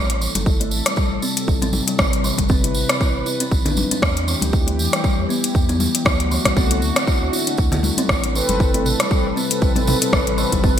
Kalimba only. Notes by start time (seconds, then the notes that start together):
0.21 E3
0.46 E4
0.60 A3
0.86 G3
0.97 G3
1.23 C4
1.48 E4
1.62 C4
1.87 G3
1.99 G3
2.24 E3
2.50 C4
2.64 E4
2.89 C4
3.00 E4
3.26 E4
3.40 C4
3.65 D4
3.91 C4
4.28 E3
4.53 E4
4.67 A3
4.92 G3
5.04 G3
5.29 B3
5.54 E4
5.69 B3
5.94 G3
6.06 F#3
6.31 E3
6.56 C4
6.71 E4
6.96 C4
7.08 E4
7.33 E4
7.47 D4
7.73 E4
7.98 C4
8.35 E3
8.60 E4
8.74 A3
8.99 G3
9.11 G3
9.36 C4
9.62 E4
9.76 C4
10.01 G3
10.13 G3
10.38 E3
10.64 C4